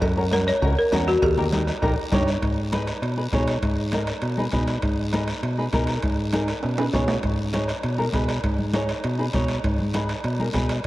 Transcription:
0.01 F#2, bombo low, bombo rim, cowbell, high conga, long guiro
0.17 C#4 F#4 A#4
0.31 C#4 F#4 A#4, bombo rim, cowbell, high conga, short guiro
0.47 C#5, bombo rim, short guiro
0.62 C#2 C#4 F#4 A#4, bombo low, bombo rim, cowbell, high conga, long guiro
0.79 A#4
0.92 E2 C#4 F#4 A#4, bombo rim, cowbell, high conga, low timbale, short guiro
1.07 F#4, bombo rim, short guiro
1.22 D#2 G4, bombo low, bombo rim, cowbell, high conga, long guiro
1.37 D#4 G4 A#4, low conga
1.52 D#4 G4 A#4, bombo rim, cowbell, high conga, short guiro
1.67 bombo rim, short guiro
1.82 A#1 D#4 G4 A#4, bombo low, bombo rim, cowbell, high conga, long guiro
2.12 G2 D#4 G4 C#5, bombo low, bombo rim, cowbell, high conga, low conga, short guiro
2.27 bombo rim, short guiro
2.42 G#2, bombo low, bombo rim, high conga, high timbale, long guiro
2.72 D#4 G#4 B4, bombo rim, high conga, high timbale, short guiro
2.87 bombo rim, high timbale, short guiro
3.02 B2, bombo rim, high conga, high timbale, long guiro
3.17 D#4 G#4 B4
3.32 B2 D#4 G#4 C#5, bombo low, bombo rim, high conga, high timbale, short guiro
3.48 bombo rim, high timbale, short guiro
3.62 G#2, bombo low, bombo rim, high conga, high timbale, long guiro
3.92 D#4 G#4 A#4, bombo rim, high conga, high timbale, short guiro
4.07 bombo rim, high timbale, short guiro
4.22 B2, bombo rim, high conga, high timbale, long guiro
4.37 D#4 G#4 B4, high conga
4.52 B2 D#4 G#4 B4, bombo low, bombo rim, high conga, high timbale, short guiro
4.67 bombo rim, high timbale, short guiro
4.82 G#2, bombo low, bombo rim, high conga, high timbale, long guiro
5.13 D#4 G#4 B4, bombo rim, high conga, high timbale, short guiro
5.27 bombo rim, high timbale, short guiro
5.43 B2, bombo rim, high conga, high timbale
5.58 D#4 G#4 B4
5.73 B2 D#4 G#4 A#4, bombo low, bombo rim, high conga, high timbale, short guiro
5.87 bombo rim, high timbale, short guiro
6.03 G#2, bombo low, bombo rim, high conga, high timbale, long guiro
6.33 D#4 G#4 A#4, bombo rim, high conga, high timbale, short guiro
6.48 bombo rim, high timbale, short guiro
6.63 B2, bombo rim, high conga, high timbale, long guiro
6.78 D#4 G#4 B4, high timbale
6.93 B2 D#4 G#4 C#5, bombo low, bombo rim, high conga, low timbale, short guiro
7.08 bombo rim, low timbale, short guiro
7.23 G#2, bombo low, bombo rim, high conga, high timbale, long guiro
7.53 D#4 G#4 C#5, bombo rim, high conga, high timbale, short guiro
7.68 bombo rim, high timbale, short guiro
7.83 B2, bombo rim, high conga, high timbale, long guiro
7.98 D#4 G#4 A#4, high conga
8.13 B2 D#4 G#4 B4, bombo low, bombo rim, high conga, high timbale, short guiro
8.28 bombo rim, high timbale, short guiro
8.44 G#2, bombo low, bombo rim, high conga, high timbale, long guiro
8.59 high conga
8.73 D#4 G#4 C#5, bombo rim, high conga, high timbale, short guiro
8.89 bombo rim, high timbale, short guiro
9.04 B2, bombo rim, high conga, high timbale, long guiro
9.19 D#4 G#4 B4
9.34 B2 D#4 G#4 C#5, bombo low, bombo rim, high conga, high timbale, short guiro
9.49 bombo rim, high timbale, short guiro
9.64 G#2, bombo low, bombo rim, high conga, high timbale, long guiro
9.79 high conga
9.94 D#4 G#4 B4, bombo rim, high conga, high timbale, short guiro
10.09 bombo rim, high timbale, short guiro
10.24 B2, bombo rim, high conga, high timbale, long guiro
10.39 D#4 G#4 A#4, high conga
10.53 B2 D#4 G#4 B4, bombo low, bombo rim, high conga, high timbale, short guiro
10.69 bombo rim, high timbale, short guiro

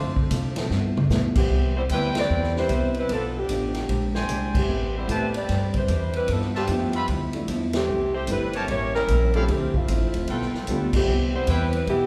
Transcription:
Already playing: D3 F3 A3 C4 D4 F4 A4 C5
0.16 kick
0.30 C3 D3 A3 C4 F4, kick, hi-hat pedal, ride
0.55 F3 B3 E4 A4, snare, ride
0.70 G2 F3 B3 E4, snare
0.97 mid tom
1.10 G2 A2 F3 B3 E4, snare, hi-hat pedal
1.35 E3 B3 C4 G4, kick, crash
1.50 C2 C3 G3 B3
1.55 E4
1.77 G3 B3 E4 C5
1.89 D2 C3 G3 B3 C4 E4 B4 G5, kick, hi-hat pedal, ride
1.94 E4
2.15 C4 G4 B4 D5, snare, ride
2.29 E2 C3 G3 B3 E4
2.43 snare
2.56 G3 C4 D4 E4 G4 B4 C5, snare
2.69 C2 C3 G3 B3 E4, kick, hi-hat pedal, ride
2.94 ride
2.99 G3 C4 E4 B4
3.08 B1 B2 A3 D4 F4 B4 D5 A5, kick, ride
3.12 F3 B3 D4 A4
3.38 F3 B3 D4 G4
3.48 A1 B2 A3 D4 F4, kick, hi-hat pedal, ride
3.75 snare, ride
3.88 A#1 A#2 G#3 D4 G4, kick, ride
4.15 C5 D5 G5 G#5, snare
4.28 C2 A#2 G#3 D4 G4, kick, hi-hat pedal, ride
4.55 E3 B3 C4 G4, kick, crash
4.67 A1 A3 C4 G4 B4
4.97 G3 B3 E4 C5
5.08 A2 G3 A3 B3 C4 E4 G4 B4 C5 A5, kick, hi-hat pedal, ride
5.12 C4
5.34 C4 G4 B4 D5, ride
5.48 G2 A3 C4 G4 B4, kick, snare, ride
5.74 G3 E4 B4, kick, ride
5.78 C5
5.88 E2 A3 C4 G4 B4, kick, hi-hat pedal, ride
6.13 G3 C4 E4 B4, ride
6.28 G2 F3 B3 D4 A4, kick, ride
6.32 E4
6.41 snare
6.55 F3 B3 D4 F4 G4 B4 E5 A5, snare
6.67 F2 G2 F3 A3 B3 D4 E4, kick, hi-hat pedal, ride
6.72 E4
6.93 F4 B4 E5 B5, ride
7.08 D2 G2 F3, kick, ride
7.12 B3 E4
7.33 F3 A3 B3 D4 E4, ride
7.48 E2 G2 F3 B3 E4, kick, hi-hat pedal, ride
7.73 E3 A3 C4 G4, snare, ride
7.88 C2 C3 G3 A3 E4
8.15 A3 E4 G4 C5
8.27 G1 C3 G3 A3 C4 D4 E4 B4, kick, hi-hat pedal, ride
8.31 G3
8.53 A#3 E4 G4 A#4 C#5 A5, ride
8.68 A1 A2 G3 A#3 E4 G4 C#5, kick, ride
8.72 C#4
8.94 G3 C#4 E4 A#4, snare
9.08 A#1 A2 G3 A#3 C#4, kick, hi-hat pedal, ride
9.34 F3 G3 A3 C4 C#4 D4 E4 G4 A4 C5 D5 F5, ride
9.48 D2 D3 E3 F3 A3 C4 E4 G4, kick, ride
9.74 A3 C4 E4 F4, kick
9.88 A1 D3 F3 C4 E4, kick, hi-hat pedal, ride
10.02 F1
10.14 D1, ride
10.27 B1 G3 B3 F4 A4 B4 G5, kick, ride
10.32 A4
10.41 snare
10.53 muted upright bass stroke, snare
10.67 D2 G3 A3 B3 D4 F4, kick, hi-hat pedal, ride
10.71 A4
10.93 E3 B3 C4 G4, kick, crash
11.07 C2 C3 G3 B3 E4
11.34 G3 B3 E4 C5
11.46 E2 C3 G3 B3 C4 E4 B4 C5 G5, kick, hi-hat pedal, ride
11.73 ride
11.87 B2 C3 E3 G3 B3 E4 G4, kick, ride

